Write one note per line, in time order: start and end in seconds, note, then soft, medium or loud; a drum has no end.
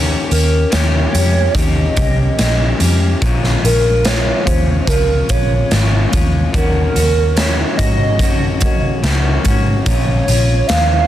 0.00 0.14 D#2 medium
0.00 0.30 D#3 medium
0.00 0.30 A#3 medium
0.00 0.30 C#4 medium
0.00 0.28 G4 medium
0.29 0.64 D#2 medium
0.29 0.70 A#3 soft
0.29 0.70 C#4 soft
0.29 0.71 G4 soft
0.29 0.73 A#4 medium
0.29 closed hi-hat medium
0.70 1.06 D#2 medium
0.70 1.13 D#3 medium
0.70 1.13 A#3 medium
0.70 1.12 C#4 medium
0.70 1.11 G4 medium
0.70 1.55 C#5 medium
0.70 snare loud
0.70 closed hi-hat medium
1.12 1.47 F2 medium
1.12 1.54 A#3 soft
1.12 1.55 C#4 soft
1.12 1.54 G4 soft
1.12 closed hi-hat medium
1.54 1.88 D#2 medium
1.54 1.96 D#3 medium
1.54 1.96 A#3 medium
1.54 1.96 C#4 medium
1.54 1.94 G4 medium
1.54 2.37 D#5 loud
1.54 kick medium
1.54 closed hi-hat medium
1.96 2.30 C2 medium
1.96 2.38 A#3 soft
1.96 2.38 C#4 soft
1.96 2.38 G4 soft
1.96 kick medium
1.96 closed hi-hat medium
2.38 2.72 A#1 medium
2.38 2.80 D#3 medium
2.38 2.80 A#3 medium
2.38 2.80 C#4 medium
2.38 2.78 G4 medium
2.38 2.96 D#5 medium
2.38 snare medium
2.38 closed hi-hat medium
2.79 3.13 F2 medium
2.79 3.22 A#3 soft
2.79 3.22 C#4 soft
2.79 3.21 G4 soft
2.79 closed hi-hat medium
3.21 3.55 A#1 medium
3.21 3.63 A#2 medium
3.21 3.63 F3 medium
3.21 3.63 G#3 medium
3.21 3.63 C#4 medium
3.21 3.61 F4 medium
3.21 kick loud
3.21 closed hi-hat medium
3.44 snare soft
3.62 4.30 A#1 medium
3.62 4.05 G#3 soft
3.62 4.05 C#4 soft
3.62 4.04 F4 soft
3.62 4.06 A#4 loud
3.62 closed hi-hat medium
4.05 4.46 A#2 medium
4.05 4.46 F3 medium
4.05 4.47 G#3 medium
4.05 4.46 C#4 medium
4.05 4.44 F4 medium
4.05 4.48 C#5 loud
4.05 snare loud
4.05 closed hi-hat medium
4.45 4.80 D#2 medium
4.45 4.88 G#3 soft
4.45 4.88 C#4 soft
4.45 4.87 F4 medium
4.45 4.89 C5 loud
4.45 kick medium
4.45 closed hi-hat medium
4.87 5.21 C#2 medium
4.87 5.29 F3 medium
4.87 5.30 G#3 medium
4.87 5.30 C#4 medium
4.87 5.28 F4 medium
4.87 5.31 A#4 loud
4.87 kick medium
4.87 closed hi-hat medium
5.29 5.63 A#1 medium
5.29 5.71 G#3 soft
5.29 5.72 C#4 soft
5.29 5.71 F4 soft
5.29 6.12 C#5 medium
5.29 kick medium
5.29 closed hi-hat medium
5.71 6.05 G#1 medium
5.71 6.12 A#2 medium
5.71 6.12 F3 medium
5.71 6.13 G#3 medium
5.71 6.12 C#4 medium
5.71 6.10 F4 medium
5.71 snare loud
5.71 closed hi-hat medium
6.11 6.46 D#2 medium
6.11 6.54 G#3 soft
6.11 6.53 C#4 soft
6.11 6.53 F4 soft
6.11 kick medium
6.11 closed hi-hat medium
6.53 6.87 D#2 medium
6.53 6.95 D#3 medium
6.53 6.95 A#3 medium
6.53 6.96 C#4 medium
6.53 6.94 F#4 medium
6.53 7.38 A#4 medium
6.53 kick loud
6.53 closed hi-hat medium
6.95 7.62 D#2 medium
6.95 7.36 A#3 soft
6.95 7.36 C#4 soft
6.95 7.37 F#4 medium
6.95 closed hi-hat medium
7.36 7.78 D#3 medium
7.36 7.78 A#3 medium
7.36 7.78 C#4 medium
7.36 7.77 F#4 medium
7.36 7.77 C#5 medium
7.36 snare loud
7.36 closed hi-hat medium
7.77 8.20 G#2 medium
7.77 8.20 A#3 soft
7.77 8.20 C#4 soft
7.77 8.20 F#4 soft
7.77 8.99 D#5 loud
7.77 kick medium
7.77 closed hi-hat medium
8.19 8.62 F#2 medium
8.19 8.61 D#3 medium
8.19 8.62 A#3 medium
8.19 8.61 C#4 medium
8.19 8.59 F#4 medium
8.19 kick medium
8.19 closed hi-hat medium
8.60 8.95 D#2 medium
8.60 9.03 A#3 soft
8.60 9.04 C#4 soft
8.60 9.02 F#4 soft
8.60 kick medium
8.60 closed hi-hat medium
9.03 9.36 C#2 loud
9.03 9.44 D#3 medium
9.03 9.45 A#3 medium
9.03 9.45 C#4 medium
9.03 9.44 F#4 medium
9.03 snare medium
9.03 closed hi-hat medium
9.45 9.79 G#2 medium
9.45 9.87 A#3 soft
9.45 9.86 C#4 soft
9.45 9.86 F#4 medium
9.45 kick medium
9.45 closed hi-hat medium
9.86 10.20 A#1 loud
9.86 10.28 A#2 medium
9.86 10.28 F3 medium
9.86 10.28 G#3 medium
9.86 10.28 C#4 medium
9.86 10.27 F4 medium
9.86 10.68 C#5 loud
9.86 kick loud
9.86 closed hi-hat medium
10.28 10.61 A#1 medium
10.28 10.69 G#3 soft
10.28 10.70 C#4 soft
10.28 10.69 F4 soft
10.28 closed hi-hat medium
10.67 11.03 D#2 medium
10.67 11.07 A#2 medium
10.67 11.07 F3 medium
10.67 11.07 G#3 medium
10.67 11.07 F5 loud
10.67 snare loud
10.67 closed hi-hat medium
10.71 11.07 C#4 medium
10.71 11.07 F4 medium